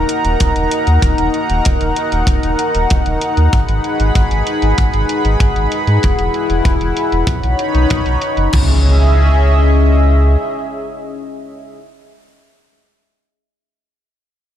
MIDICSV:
0, 0, Header, 1, 5, 480
1, 0, Start_track
1, 0, Tempo, 625000
1, 789, Time_signature, 4, 2, 24, 8
1, 11186, End_track
2, 0, Start_track
2, 0, Title_t, "Analog synth pad"
2, 0, Program_c, 0, 89
2, 0, Note_on_c, 0, 63, 75
2, 0, Note_on_c, 0, 70, 73
2, 0, Note_on_c, 0, 78, 71
2, 0, Note_on_c, 0, 82, 85
2, 2678, Note_off_c, 0, 70, 0
2, 2678, Note_off_c, 0, 82, 0
2, 2711, Note_on_c, 0, 68, 70
2, 2711, Note_on_c, 0, 83, 88
2, 4598, Note_off_c, 0, 63, 0
2, 4628, Note_on_c, 0, 64, 74
2, 5561, Note_off_c, 0, 68, 0
2, 5561, Note_off_c, 0, 83, 0
2, 5579, Note_off_c, 0, 64, 0
2, 5589, Note_on_c, 0, 73, 72
2, 5590, Note_on_c, 0, 63, 81
2, 5590, Note_on_c, 0, 83, 85
2, 6518, Note_off_c, 0, 78, 0
2, 6539, Note_off_c, 0, 73, 0
2, 6540, Note_off_c, 0, 63, 0
2, 6540, Note_off_c, 0, 83, 0
2, 6548, Note_on_c, 0, 61, 74
2, 6548, Note_on_c, 0, 68, 71
2, 6548, Note_on_c, 0, 75, 72
2, 6548, Note_on_c, 0, 76, 85
2, 9052, Note_off_c, 0, 61, 0
2, 9052, Note_off_c, 0, 68, 0
2, 9052, Note_off_c, 0, 75, 0
2, 9052, Note_off_c, 0, 76, 0
2, 11186, End_track
3, 0, Start_track
3, 0, Title_t, "Analog synth bass"
3, 0, Program_c, 1, 38
3, 189, Note_on_c, 1, 27, 78
3, 278, Note_off_c, 1, 27, 0
3, 312, Note_on_c, 1, 27, 101
3, 399, Note_off_c, 1, 27, 0
3, 430, Note_on_c, 1, 27, 75
3, 518, Note_off_c, 1, 27, 0
3, 670, Note_on_c, 1, 39, 83
3, 759, Note_off_c, 1, 39, 0
3, 787, Note_on_c, 1, 27, 94
3, 877, Note_off_c, 1, 27, 0
3, 909, Note_on_c, 1, 27, 79
3, 998, Note_off_c, 1, 27, 0
3, 1150, Note_on_c, 1, 27, 83
3, 1239, Note_off_c, 1, 27, 0
3, 1275, Note_on_c, 1, 27, 98
3, 1361, Note_off_c, 1, 27, 0
3, 1391, Note_on_c, 1, 27, 70
3, 1479, Note_off_c, 1, 27, 0
3, 1630, Note_on_c, 1, 27, 80
3, 1719, Note_off_c, 1, 27, 0
3, 1743, Note_on_c, 1, 27, 100
3, 1835, Note_off_c, 1, 27, 0
3, 1871, Note_on_c, 1, 27, 74
3, 1959, Note_off_c, 1, 27, 0
3, 2110, Note_on_c, 1, 27, 78
3, 2199, Note_off_c, 1, 27, 0
3, 2235, Note_on_c, 1, 27, 107
3, 2321, Note_off_c, 1, 27, 0
3, 2350, Note_on_c, 1, 27, 77
3, 2439, Note_off_c, 1, 27, 0
3, 2590, Note_on_c, 1, 39, 82
3, 2679, Note_off_c, 1, 39, 0
3, 2712, Note_on_c, 1, 32, 101
3, 2800, Note_off_c, 1, 32, 0
3, 2830, Note_on_c, 1, 32, 78
3, 2918, Note_off_c, 1, 32, 0
3, 3070, Note_on_c, 1, 32, 77
3, 3158, Note_off_c, 1, 32, 0
3, 3190, Note_on_c, 1, 32, 94
3, 3279, Note_off_c, 1, 32, 0
3, 3310, Note_on_c, 1, 32, 72
3, 3399, Note_off_c, 1, 32, 0
3, 3550, Note_on_c, 1, 32, 75
3, 3639, Note_off_c, 1, 32, 0
3, 3673, Note_on_c, 1, 32, 94
3, 3760, Note_off_c, 1, 32, 0
3, 3790, Note_on_c, 1, 32, 73
3, 3878, Note_off_c, 1, 32, 0
3, 4030, Note_on_c, 1, 32, 73
3, 4118, Note_off_c, 1, 32, 0
3, 4149, Note_on_c, 1, 32, 100
3, 4238, Note_off_c, 1, 32, 0
3, 4270, Note_on_c, 1, 32, 69
3, 4359, Note_off_c, 1, 32, 0
3, 4510, Note_on_c, 1, 44, 79
3, 4599, Note_off_c, 1, 44, 0
3, 4638, Note_on_c, 1, 28, 99
3, 4723, Note_off_c, 1, 28, 0
3, 4750, Note_on_c, 1, 28, 72
3, 4838, Note_off_c, 1, 28, 0
3, 4990, Note_on_c, 1, 28, 77
3, 5078, Note_off_c, 1, 28, 0
3, 5109, Note_on_c, 1, 28, 97
3, 5198, Note_off_c, 1, 28, 0
3, 5229, Note_on_c, 1, 28, 74
3, 5318, Note_off_c, 1, 28, 0
3, 5469, Note_on_c, 1, 28, 79
3, 5558, Note_off_c, 1, 28, 0
3, 5584, Note_on_c, 1, 35, 94
3, 5675, Note_off_c, 1, 35, 0
3, 5708, Note_on_c, 1, 35, 71
3, 5798, Note_off_c, 1, 35, 0
3, 5948, Note_on_c, 1, 35, 77
3, 6037, Note_off_c, 1, 35, 0
3, 6074, Note_on_c, 1, 35, 107
3, 6160, Note_off_c, 1, 35, 0
3, 6188, Note_on_c, 1, 35, 74
3, 6277, Note_off_c, 1, 35, 0
3, 6428, Note_on_c, 1, 30, 77
3, 6517, Note_off_c, 1, 30, 0
3, 6555, Note_on_c, 1, 37, 90
3, 7961, Note_off_c, 1, 37, 0
3, 11186, End_track
4, 0, Start_track
4, 0, Title_t, "Impact"
4, 0, Program_c, 2, 103
4, 6548, Note_on_c, 2, 60, 60
4, 9310, Note_off_c, 2, 60, 0
4, 11186, End_track
5, 0, Start_track
5, 0, Title_t, "Drums"
5, 68, Note_on_c, 9, 42, 60
5, 145, Note_off_c, 9, 42, 0
5, 189, Note_on_c, 9, 42, 35
5, 266, Note_off_c, 9, 42, 0
5, 308, Note_on_c, 9, 42, 84
5, 312, Note_on_c, 9, 36, 108
5, 385, Note_off_c, 9, 42, 0
5, 388, Note_off_c, 9, 36, 0
5, 429, Note_on_c, 9, 42, 36
5, 506, Note_off_c, 9, 42, 0
5, 548, Note_on_c, 9, 42, 63
5, 625, Note_off_c, 9, 42, 0
5, 668, Note_on_c, 9, 42, 34
5, 744, Note_off_c, 9, 42, 0
5, 786, Note_on_c, 9, 36, 102
5, 787, Note_on_c, 9, 42, 86
5, 863, Note_off_c, 9, 36, 0
5, 864, Note_off_c, 9, 42, 0
5, 908, Note_on_c, 9, 42, 34
5, 985, Note_off_c, 9, 42, 0
5, 1029, Note_on_c, 9, 42, 33
5, 1106, Note_off_c, 9, 42, 0
5, 1149, Note_on_c, 9, 42, 37
5, 1225, Note_off_c, 9, 42, 0
5, 1268, Note_on_c, 9, 42, 84
5, 1275, Note_on_c, 9, 36, 111
5, 1345, Note_off_c, 9, 42, 0
5, 1352, Note_off_c, 9, 36, 0
5, 1388, Note_on_c, 9, 42, 37
5, 1465, Note_off_c, 9, 42, 0
5, 1508, Note_on_c, 9, 42, 58
5, 1585, Note_off_c, 9, 42, 0
5, 1628, Note_on_c, 9, 42, 37
5, 1705, Note_off_c, 9, 42, 0
5, 1743, Note_on_c, 9, 36, 113
5, 1748, Note_on_c, 9, 42, 81
5, 1819, Note_off_c, 9, 36, 0
5, 1825, Note_off_c, 9, 42, 0
5, 1868, Note_on_c, 9, 42, 37
5, 1945, Note_off_c, 9, 42, 0
5, 1988, Note_on_c, 9, 42, 59
5, 2065, Note_off_c, 9, 42, 0
5, 2109, Note_on_c, 9, 42, 35
5, 2186, Note_off_c, 9, 42, 0
5, 2230, Note_on_c, 9, 42, 83
5, 2234, Note_on_c, 9, 36, 111
5, 2307, Note_off_c, 9, 42, 0
5, 2311, Note_off_c, 9, 36, 0
5, 2349, Note_on_c, 9, 42, 36
5, 2426, Note_off_c, 9, 42, 0
5, 2469, Note_on_c, 9, 42, 62
5, 2545, Note_off_c, 9, 42, 0
5, 2589, Note_on_c, 9, 42, 37
5, 2666, Note_off_c, 9, 42, 0
5, 2710, Note_on_c, 9, 42, 88
5, 2711, Note_on_c, 9, 36, 107
5, 2787, Note_off_c, 9, 42, 0
5, 2788, Note_off_c, 9, 36, 0
5, 2830, Note_on_c, 9, 42, 36
5, 2907, Note_off_c, 9, 42, 0
5, 2950, Note_on_c, 9, 42, 34
5, 3027, Note_off_c, 9, 42, 0
5, 3070, Note_on_c, 9, 42, 37
5, 3147, Note_off_c, 9, 42, 0
5, 3190, Note_on_c, 9, 36, 96
5, 3191, Note_on_c, 9, 42, 88
5, 3267, Note_off_c, 9, 36, 0
5, 3267, Note_off_c, 9, 42, 0
5, 3311, Note_on_c, 9, 42, 38
5, 3388, Note_off_c, 9, 42, 0
5, 3431, Note_on_c, 9, 42, 60
5, 3507, Note_off_c, 9, 42, 0
5, 3550, Note_on_c, 9, 42, 37
5, 3626, Note_off_c, 9, 42, 0
5, 3670, Note_on_c, 9, 42, 81
5, 3673, Note_on_c, 9, 36, 93
5, 3747, Note_off_c, 9, 42, 0
5, 3750, Note_off_c, 9, 36, 0
5, 3790, Note_on_c, 9, 42, 36
5, 3867, Note_off_c, 9, 42, 0
5, 3911, Note_on_c, 9, 42, 59
5, 3988, Note_off_c, 9, 42, 0
5, 4030, Note_on_c, 9, 42, 34
5, 4107, Note_off_c, 9, 42, 0
5, 4149, Note_on_c, 9, 36, 108
5, 4151, Note_on_c, 9, 42, 81
5, 4226, Note_off_c, 9, 36, 0
5, 4228, Note_off_c, 9, 42, 0
5, 4271, Note_on_c, 9, 42, 37
5, 4348, Note_off_c, 9, 42, 0
5, 4391, Note_on_c, 9, 42, 63
5, 4467, Note_off_c, 9, 42, 0
5, 4511, Note_on_c, 9, 42, 35
5, 4588, Note_off_c, 9, 42, 0
5, 4631, Note_on_c, 9, 42, 91
5, 4638, Note_on_c, 9, 36, 96
5, 4708, Note_off_c, 9, 42, 0
5, 4715, Note_off_c, 9, 36, 0
5, 4751, Note_on_c, 9, 42, 36
5, 4828, Note_off_c, 9, 42, 0
5, 4870, Note_on_c, 9, 42, 33
5, 4947, Note_off_c, 9, 42, 0
5, 4990, Note_on_c, 9, 42, 38
5, 5067, Note_off_c, 9, 42, 0
5, 5108, Note_on_c, 9, 36, 112
5, 5110, Note_on_c, 9, 42, 91
5, 5185, Note_off_c, 9, 36, 0
5, 5187, Note_off_c, 9, 42, 0
5, 5230, Note_on_c, 9, 42, 38
5, 5307, Note_off_c, 9, 42, 0
5, 5350, Note_on_c, 9, 42, 65
5, 5427, Note_off_c, 9, 42, 0
5, 5470, Note_on_c, 9, 42, 37
5, 5547, Note_off_c, 9, 42, 0
5, 5584, Note_on_c, 9, 36, 119
5, 5590, Note_on_c, 9, 42, 88
5, 5660, Note_off_c, 9, 36, 0
5, 5667, Note_off_c, 9, 42, 0
5, 5710, Note_on_c, 9, 42, 37
5, 5786, Note_off_c, 9, 42, 0
5, 5829, Note_on_c, 9, 42, 61
5, 5906, Note_off_c, 9, 42, 0
5, 5949, Note_on_c, 9, 42, 36
5, 6026, Note_off_c, 9, 42, 0
5, 6069, Note_on_c, 9, 42, 84
5, 6073, Note_on_c, 9, 36, 106
5, 6146, Note_off_c, 9, 42, 0
5, 6150, Note_off_c, 9, 36, 0
5, 6189, Note_on_c, 9, 42, 38
5, 6266, Note_off_c, 9, 42, 0
5, 6309, Note_on_c, 9, 42, 65
5, 6386, Note_off_c, 9, 42, 0
5, 6430, Note_on_c, 9, 42, 38
5, 6506, Note_off_c, 9, 42, 0
5, 6550, Note_on_c, 9, 49, 80
5, 6555, Note_on_c, 9, 36, 98
5, 6627, Note_off_c, 9, 49, 0
5, 6632, Note_off_c, 9, 36, 0
5, 11186, End_track
0, 0, End_of_file